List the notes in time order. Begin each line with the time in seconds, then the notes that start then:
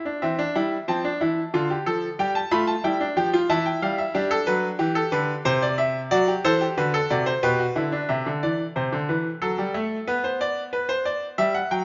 0.05 D4
0.22 E3 C4 E5
0.39 D4
0.55 G3 E4
0.88 F3 C4 A5
1.04 D4
1.21 E3 E4
1.54 D3 F4
1.70 G4
1.86 F3 A4
2.19 G3 G4 G5
2.35 A5
2.51 A3 F4 B5
2.67 A5
2.84 G3 E4 G5
3.00 D4
3.17 F3 G4 G5
3.33 F4
3.50 E3 E4 A5
3.66 G5
3.82 G3 F5
3.98 E5
4.14 G3 D4 G4
4.31 A4
4.47 F#3 B4
4.79 E3 G4
4.95 A4
5.12 D3 B4
5.45 C3 C5
5.62 D5
5.78 E5
6.11 F#3 F#4 D5
6.28 G4
6.44 E3 A4 C5
6.61 G4
6.77 D3 F#4 B4
6.94 A4
7.10 C3 F#4 D5
7.26 C5
7.43 B2 G4 B4
7.59 F#4
7.76 D3 E4
7.92 D4
8.09 C3 E5
8.26 D3
8.43 E3 D5
8.76 C3 C5
8.93 D3
9.09 E3 B4
9.42 F#3 A4
9.58 G3
9.74 A3
10.07 B3 B4
10.24 C5
10.41 D5
10.73 B4
10.89 C5
11.05 D5
11.38 G3 E5
11.54 F#5
11.71 F#3 G5